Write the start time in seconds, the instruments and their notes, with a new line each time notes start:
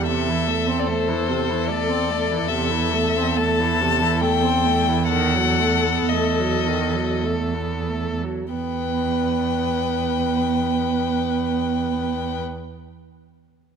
Already playing: cello E2
0.07 viola C3, violin A4 E5
0.29 viola E3
0.48 viola A3
0.68 viola C4
0.79 violin D5
0.87 viola A3, violin C5
1.08 viola E3
1.29 viola C3
1.49 viola E3
1.68 viola A3, violin D5
1.89 viola C4
2.10 viola A3
2.31 viola E3
2.49 cello E2, viola C3, violin E5
2.71 viola E3
2.93 viola A3
3.17 viola C4
3.37 viola A3, violin A5
3.60 viola E3
3.82 viola C3
4.01 viola E3
4.21 viola A3, violin G5
4.43 viola C4
4.66 viola A3
4.88 viola E3
5.08 viola D#3, violin A4 F#5
5.35 viola F#3
5.60 viola A3
5.86 viola B3
6.09 viola A3, violin D#5
6.39 viola F#3
6.66 viola D#3
6.94 viola F#3
7.25 viola A3
7.55 viola B3
7.89 viola A3
8.23 viola F#3
8.54 cello E2, viola B3, violin B4 G5